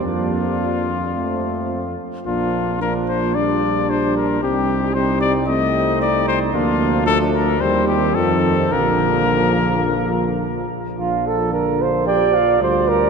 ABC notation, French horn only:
X:1
M:4/4
L:1/8
Q:1/4=111
K:Bb
V:1 name="French horn"
B,3 z A,3 z | B,2 B,2 D4 | C2 C2 C4 | B,2 A,2 G,2 F,2 |
F,6- F, z | D4 G F3 |]